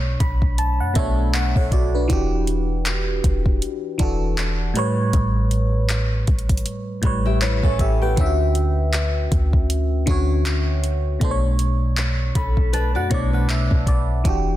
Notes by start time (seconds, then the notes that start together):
Already playing: B1 B2 A3 D4 C#5
0.20 B1 B5, kick, closed hi-hat
0.42 kick
0.58 A5, closed hi-hat
0.80 F#2 F#5
0.94 B1 B2 A3 D4 E5, kick, closed hi-hat
0.99 C#5
1.34 F#5, clap, closed hi-hat
1.56 B1 A4 C#5 F#5, kick
1.72 F#4 D5, kick, closed hi-hat
1.95 D4 B4
2.08 E1 E3 D4 F#4, kick, closed hi-hat
2.13 G4
2.47 closed hi-hat
2.86 clap, closed hi-hat
3.24 E1, kick, closed hi-hat
3.46 kick
3.62 closed hi-hat
3.98 E1 E3 D4 F#4, kick, closed hi-hat
4.03 A4
4.38 clap, closed hi-hat
4.74 A2 G3 B4, closed hi-hat
4.79 C#5
5.13 A1, kick, closed hi-hat
5.51 closed hi-hat
5.89 clap, closed hi-hat
6.27 A1, kick, closed hi-hat
6.39 closed hi-hat
6.49 kick, closed hi-hat
6.57 closed hi-hat
6.66 closed hi-hat
7.02 A1 A2 G3 B4, kick, closed hi-hat
7.06 C#5
7.25 G4 E5
7.41 E4 B4 C#5, clap, closed hi-hat
7.63 A1 C#4 E4 A4 C#5, kick
7.79 G4 E5, kick, closed hi-hat
8.02 B3 G4 B4 G5
8.16 D2 D3 C#4 E4, kick, closed hi-hat
8.21 E5
8.26 F#4
8.55 closed hi-hat
8.93 clap, closed hi-hat
9.32 D2, kick, closed hi-hat
9.53 kick
9.70 closed hi-hat
10.06 D2 D3 C#4 F#4, kick, closed hi-hat
10.11 C#5
10.46 clap, closed hi-hat
10.84 closed hi-hat
11.20 B1 B2 A3 D4, kick, closed hi-hat
11.24 C5
11.31 C#5
11.59 closed hi-hat
11.97 clap, closed hi-hat
12.35 B1 C#4 A4 B5, kick, closed hi-hat
12.57 kick
12.73 D4 B4 A5, closed hi-hat
12.95 F#2 F#4 D5 F#5
13.09 B1 B2 A3 D4 E4 C#5, kick, closed hi-hat
13.14 D5
13.33 D4 B4 F#5
13.49 E5, clap, closed hi-hat
13.71 B1, kick
13.87 D5, kick, closed hi-hat
14.24 E1 E3 D4 F#4, kick, closed hi-hat
14.29 G4